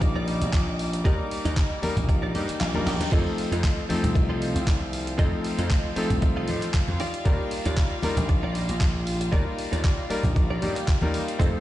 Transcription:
Already playing: A#1 G3 A#3 D#4 A#4 D5 D6
0.01 muted clean electric guitar stroke, kick, closed hi-hat
0.15 D#4 G4 D5
0.28 open hi-hat
0.41 A#1, closed hi-hat
0.53 kick, clap, closed hi-hat
0.79 open hi-hat
0.93 muted clean electric guitar stroke, closed hi-hat
1.04 D#2 G3 A#3 D#4 G4 A#4 D5, kick, closed hi-hat
1.31 open hi-hat
1.45 D#2 D#4 G4 D#5, closed hi-hat
1.57 kick, clap, closed hi-hat
1.82 G3 A#3 D#4 A#4, muted slap bass stroke, open hi-hat, high conga
1.97 A#1, kick, closed hi-hat, low conga
2.09 muted clean electric guitar stroke, kick, closed hi-hat, reverse cymbal
2.22 D#4 G4 D5
2.35 G2 G3 A#3 D#4 G4 D#5, open hi-hat, high conga
2.49 muted slap bass stroke, clap, closed hi-hat
2.60 A#1 F5, clap, closed hi-hat, high tom
2.74 G3 A#3 D#4 A#4, high tom, high conga
2.86 A#1 G5, snare, open hi-hat
3.00 D#2, muted clean electric guitar stroke, snare, closed hi-hat, high conga
3.12 F2 F3 A3 C4 D#4 F4 A4 D#5 F5, kick, closed hi-hat, crash
3.38 open hi-hat
3.52 F2 F4 A4 D#5, closed hi-hat
3.64 kick, clap, closed hi-hat
3.89 F3 A3 C4 D#4 A4, muted slap bass stroke, open hi-hat, high conga
4.03 C2, closed hi-hat, low conga
4.15 muted clean electric guitar stroke, kick, closed hi-hat
4.29 F4 A4 D#5
4.42 open hi-hat
4.55 C2, closed hi-hat
4.67 kick, clap, closed hi-hat
4.93 open hi-hat
5.07 muted clean electric guitar stroke, closed hi-hat
5.18 F2 F3 A3 C4 D#4 F4 A4 D#5, kick, closed hi-hat
5.44 open hi-hat
5.58 F2 F4 A4 D#5, closed hi-hat
5.71 kick, clap, closed hi-hat
5.96 F3 A3 C4 D#4 A4, muted slap bass stroke, open hi-hat
6.10 C2, kick, closed hi-hat, low conga
6.22 muted clean electric guitar stroke, kick, closed hi-hat
6.36 F4 A4 D#5
6.48 A2, open hi-hat, high conga
6.62 clap, closed hi-hat
6.74 kick, clap, closed hi-hat
6.88 F2, high conga
7.00 D#4 G4 D5, open hi-hat
7.14 closed hi-hat
7.25 D#2 G3 A#3 D#4 A#4 D5, kick, closed hi-hat
7.51 open hi-hat
7.65 D#2 D#4 G4 D5, closed hi-hat
7.77 kick, clap, closed hi-hat
8.02 G3 A#3 D#4 A#4 D5, muted slap bass stroke, open hi-hat, high conga
8.17 A#1, closed hi-hat, low conga
8.29 muted clean electric guitar stroke, kick, closed hi-hat
8.43 D#4 G4 D5
8.55 open hi-hat
8.69 A#1, closed hi-hat
8.81 kick, clap, closed hi-hat
9.07 open hi-hat
9.21 muted clean electric guitar stroke, closed hi-hat
9.32 D#2 G3 A#3 D#4 G4 A#4 D5, kick, closed hi-hat
9.59 open hi-hat
9.72 D#2 D#4 G4 D5, closed hi-hat
9.84 kick, clap, closed hi-hat
10.10 G3 A#3 D#4 A#4 D5, muted slap bass stroke, open hi-hat
10.23 A#1, kick, closed hi-hat, low conga
10.36 muted clean electric guitar stroke, kick, closed hi-hat
10.50 D#4 G4 D5
10.62 G2 G3 A#3 D#4 G4 D5, open hi-hat, high conga
10.76 clap, closed hi-hat
10.88 kick, clap, closed hi-hat
11.01 D#2 G3 A#3 D#4 A#4 D5, high conga
11.14 open hi-hat
11.28 muted clean electric guitar stroke, closed hi-hat
11.39 F2 F3 A3 C4 D#4 F4 A4 C5 D#5, kick, closed hi-hat, shaker

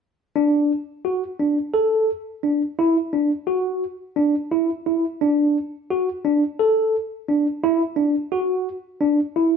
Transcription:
0.36 D4
1.05 F#4
1.40 D4
1.74 A4
2.43 D4
2.79 E4
3.13 D4
3.47 F#4
4.16 D4
4.51 E4
4.86 E4
5.21 D4
5.90 F#4
6.25 D4
6.59 A4
7.28 D4
7.64 E4
7.96 D4
8.32 F#4
9.01 D4
9.36 E4

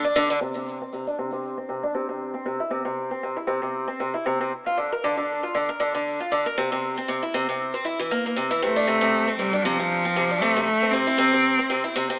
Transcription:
0.04 D4
0.16 D3
0.30 D3
0.41 C3
0.56 C3
0.81 C4
0.93 C3
1.07 D4
1.19 C3
1.32 C3
1.58 C4
1.69 C3
1.83 D4
1.94 C3
2.09 C3
2.34 C4
2.46 C3
2.60 E4
2.71 C3
2.85 C3
3.11 C4
3.23 C3
3.37 E4
3.47 C3
3.62 C3
3.88 C4
4.00 C3
4.14 E4
4.26 C3
4.40 C3
4.66 F4
4.77 D3
4.92 A#4
5.04 D3
5.17 D3
5.43 F4
5.55 D3
5.69 A#4
5.80 D3
5.95 D3
6.20 F4
6.32 D3
6.46 A#4
6.58 C3
6.72 C3
6.98 C4
7.08 C3
7.23 E4
7.34 C3
7.49 C3
7.74 C4
7.85 E4
7.99 E3
8.11 A#3
8.26 A#3
8.36 C3
8.51 E3
8.62 C3 A3
8.76 D4
8.87 C3
9.01 C3
9.28 C4
9.39 C3 G3
9.53 D4
9.64 C3 F3
9.79 C3
10.05 C4
10.16 C3
10.31 D4
10.41 C3 A3
10.57 C3
10.64 A3
10.82 C4
10.91 C3 C4
11.07 E4
11.18 C3
11.33 C3
11.59 C4
11.70 C3
11.84 E4
11.96 C3
12.10 C3

